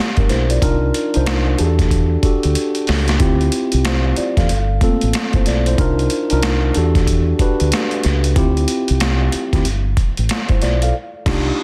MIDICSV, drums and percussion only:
0, 0, Header, 1, 2, 480
1, 0, Start_track
1, 0, Tempo, 645161
1, 458, Time_signature, 4, 2, 24, 8
1, 8655, End_track
2, 0, Start_track
2, 0, Title_t, "Drums"
2, 124, Note_on_c, 9, 42, 30
2, 128, Note_on_c, 9, 36, 74
2, 198, Note_off_c, 9, 42, 0
2, 202, Note_off_c, 9, 36, 0
2, 219, Note_on_c, 9, 42, 57
2, 227, Note_on_c, 9, 38, 29
2, 293, Note_off_c, 9, 42, 0
2, 302, Note_off_c, 9, 38, 0
2, 371, Note_on_c, 9, 42, 46
2, 445, Note_off_c, 9, 42, 0
2, 461, Note_on_c, 9, 36, 101
2, 463, Note_on_c, 9, 42, 83
2, 535, Note_off_c, 9, 36, 0
2, 537, Note_off_c, 9, 42, 0
2, 702, Note_on_c, 9, 42, 64
2, 777, Note_off_c, 9, 42, 0
2, 848, Note_on_c, 9, 42, 39
2, 922, Note_off_c, 9, 42, 0
2, 941, Note_on_c, 9, 42, 72
2, 946, Note_on_c, 9, 26, 73
2, 946, Note_on_c, 9, 38, 97
2, 1015, Note_off_c, 9, 42, 0
2, 1020, Note_off_c, 9, 26, 0
2, 1021, Note_off_c, 9, 38, 0
2, 1179, Note_on_c, 9, 42, 61
2, 1253, Note_off_c, 9, 42, 0
2, 1330, Note_on_c, 9, 36, 79
2, 1332, Note_on_c, 9, 42, 46
2, 1338, Note_on_c, 9, 38, 31
2, 1405, Note_off_c, 9, 36, 0
2, 1406, Note_off_c, 9, 42, 0
2, 1413, Note_off_c, 9, 38, 0
2, 1418, Note_on_c, 9, 36, 78
2, 1422, Note_on_c, 9, 42, 73
2, 1492, Note_off_c, 9, 36, 0
2, 1497, Note_off_c, 9, 42, 0
2, 1658, Note_on_c, 9, 36, 82
2, 1658, Note_on_c, 9, 42, 56
2, 1733, Note_off_c, 9, 36, 0
2, 1733, Note_off_c, 9, 42, 0
2, 1810, Note_on_c, 9, 42, 39
2, 1885, Note_off_c, 9, 42, 0
2, 1899, Note_on_c, 9, 42, 79
2, 1974, Note_off_c, 9, 42, 0
2, 2045, Note_on_c, 9, 42, 32
2, 2119, Note_off_c, 9, 42, 0
2, 2137, Note_on_c, 9, 46, 39
2, 2149, Note_on_c, 9, 38, 76
2, 2211, Note_off_c, 9, 46, 0
2, 2224, Note_off_c, 9, 38, 0
2, 2289, Note_on_c, 9, 42, 43
2, 2301, Note_on_c, 9, 38, 84
2, 2364, Note_off_c, 9, 42, 0
2, 2375, Note_off_c, 9, 38, 0
2, 2379, Note_on_c, 9, 42, 79
2, 2380, Note_on_c, 9, 36, 109
2, 2453, Note_off_c, 9, 42, 0
2, 2454, Note_off_c, 9, 36, 0
2, 2535, Note_on_c, 9, 42, 30
2, 2610, Note_off_c, 9, 42, 0
2, 2619, Note_on_c, 9, 42, 69
2, 2693, Note_off_c, 9, 42, 0
2, 2766, Note_on_c, 9, 42, 43
2, 2840, Note_off_c, 9, 42, 0
2, 2862, Note_on_c, 9, 42, 76
2, 2867, Note_on_c, 9, 26, 73
2, 2867, Note_on_c, 9, 38, 98
2, 2936, Note_off_c, 9, 42, 0
2, 2941, Note_off_c, 9, 26, 0
2, 2942, Note_off_c, 9, 38, 0
2, 3098, Note_on_c, 9, 42, 60
2, 3173, Note_off_c, 9, 42, 0
2, 3251, Note_on_c, 9, 36, 84
2, 3253, Note_on_c, 9, 42, 47
2, 3259, Note_on_c, 9, 38, 31
2, 3326, Note_off_c, 9, 36, 0
2, 3327, Note_off_c, 9, 42, 0
2, 3334, Note_off_c, 9, 38, 0
2, 3342, Note_on_c, 9, 42, 75
2, 3417, Note_off_c, 9, 42, 0
2, 3579, Note_on_c, 9, 36, 77
2, 3580, Note_on_c, 9, 42, 54
2, 3654, Note_off_c, 9, 36, 0
2, 3654, Note_off_c, 9, 42, 0
2, 3730, Note_on_c, 9, 42, 39
2, 3805, Note_off_c, 9, 42, 0
2, 3820, Note_on_c, 9, 42, 79
2, 3832, Note_on_c, 9, 26, 71
2, 3833, Note_on_c, 9, 38, 84
2, 3895, Note_off_c, 9, 42, 0
2, 3907, Note_off_c, 9, 26, 0
2, 3907, Note_off_c, 9, 38, 0
2, 3966, Note_on_c, 9, 42, 30
2, 3970, Note_on_c, 9, 36, 78
2, 4040, Note_off_c, 9, 42, 0
2, 4044, Note_off_c, 9, 36, 0
2, 4061, Note_on_c, 9, 42, 59
2, 4069, Note_on_c, 9, 38, 30
2, 4135, Note_off_c, 9, 42, 0
2, 4143, Note_off_c, 9, 38, 0
2, 4213, Note_on_c, 9, 42, 46
2, 4287, Note_off_c, 9, 42, 0
2, 4302, Note_on_c, 9, 36, 109
2, 4303, Note_on_c, 9, 42, 74
2, 4376, Note_off_c, 9, 36, 0
2, 4377, Note_off_c, 9, 42, 0
2, 4457, Note_on_c, 9, 42, 32
2, 4532, Note_off_c, 9, 42, 0
2, 4538, Note_on_c, 9, 42, 70
2, 4612, Note_off_c, 9, 42, 0
2, 4687, Note_on_c, 9, 42, 41
2, 4761, Note_off_c, 9, 42, 0
2, 4780, Note_on_c, 9, 42, 79
2, 4785, Note_on_c, 9, 26, 75
2, 4786, Note_on_c, 9, 38, 96
2, 4855, Note_off_c, 9, 42, 0
2, 4860, Note_off_c, 9, 26, 0
2, 4860, Note_off_c, 9, 38, 0
2, 5018, Note_on_c, 9, 42, 61
2, 5093, Note_off_c, 9, 42, 0
2, 5172, Note_on_c, 9, 36, 81
2, 5173, Note_on_c, 9, 42, 46
2, 5179, Note_on_c, 9, 38, 29
2, 5246, Note_off_c, 9, 36, 0
2, 5247, Note_off_c, 9, 42, 0
2, 5254, Note_off_c, 9, 38, 0
2, 5259, Note_on_c, 9, 36, 77
2, 5263, Note_on_c, 9, 42, 82
2, 5333, Note_off_c, 9, 36, 0
2, 5337, Note_off_c, 9, 42, 0
2, 5500, Note_on_c, 9, 36, 75
2, 5500, Note_on_c, 9, 42, 59
2, 5574, Note_off_c, 9, 36, 0
2, 5575, Note_off_c, 9, 42, 0
2, 5654, Note_on_c, 9, 42, 40
2, 5728, Note_off_c, 9, 42, 0
2, 5743, Note_on_c, 9, 42, 77
2, 5755, Note_on_c, 9, 26, 65
2, 5755, Note_on_c, 9, 38, 85
2, 5817, Note_off_c, 9, 42, 0
2, 5829, Note_off_c, 9, 26, 0
2, 5830, Note_off_c, 9, 38, 0
2, 5886, Note_on_c, 9, 42, 33
2, 5961, Note_off_c, 9, 42, 0
2, 5978, Note_on_c, 9, 42, 58
2, 5986, Note_on_c, 9, 38, 32
2, 6052, Note_off_c, 9, 42, 0
2, 6060, Note_off_c, 9, 38, 0
2, 6130, Note_on_c, 9, 42, 43
2, 6204, Note_off_c, 9, 42, 0
2, 6220, Note_on_c, 9, 36, 112
2, 6220, Note_on_c, 9, 42, 80
2, 6294, Note_off_c, 9, 36, 0
2, 6294, Note_off_c, 9, 42, 0
2, 6376, Note_on_c, 9, 42, 31
2, 6450, Note_off_c, 9, 42, 0
2, 6457, Note_on_c, 9, 42, 70
2, 6531, Note_off_c, 9, 42, 0
2, 6607, Note_on_c, 9, 42, 40
2, 6682, Note_off_c, 9, 42, 0
2, 6698, Note_on_c, 9, 42, 75
2, 6703, Note_on_c, 9, 26, 74
2, 6704, Note_on_c, 9, 38, 89
2, 6773, Note_off_c, 9, 42, 0
2, 6778, Note_off_c, 9, 26, 0
2, 6778, Note_off_c, 9, 38, 0
2, 6937, Note_on_c, 9, 42, 62
2, 7011, Note_off_c, 9, 42, 0
2, 7089, Note_on_c, 9, 36, 78
2, 7091, Note_on_c, 9, 42, 45
2, 7098, Note_on_c, 9, 38, 30
2, 7164, Note_off_c, 9, 36, 0
2, 7166, Note_off_c, 9, 42, 0
2, 7172, Note_off_c, 9, 38, 0
2, 7180, Note_on_c, 9, 42, 77
2, 7254, Note_off_c, 9, 42, 0
2, 7417, Note_on_c, 9, 36, 79
2, 7417, Note_on_c, 9, 42, 56
2, 7492, Note_off_c, 9, 36, 0
2, 7492, Note_off_c, 9, 42, 0
2, 7569, Note_on_c, 9, 42, 40
2, 7644, Note_off_c, 9, 42, 0
2, 7657, Note_on_c, 9, 42, 80
2, 7669, Note_on_c, 9, 26, 74
2, 7670, Note_on_c, 9, 38, 84
2, 7732, Note_off_c, 9, 42, 0
2, 7744, Note_off_c, 9, 26, 0
2, 7744, Note_off_c, 9, 38, 0
2, 7802, Note_on_c, 9, 42, 31
2, 7807, Note_on_c, 9, 36, 75
2, 7876, Note_off_c, 9, 42, 0
2, 7881, Note_off_c, 9, 36, 0
2, 7898, Note_on_c, 9, 42, 57
2, 7906, Note_on_c, 9, 38, 30
2, 7972, Note_off_c, 9, 42, 0
2, 7981, Note_off_c, 9, 38, 0
2, 8049, Note_on_c, 9, 42, 47
2, 8124, Note_off_c, 9, 42, 0
2, 8378, Note_on_c, 9, 36, 97
2, 8378, Note_on_c, 9, 49, 71
2, 8390, Note_on_c, 9, 38, 91
2, 8452, Note_off_c, 9, 36, 0
2, 8453, Note_off_c, 9, 49, 0
2, 8465, Note_off_c, 9, 38, 0
2, 8655, End_track
0, 0, End_of_file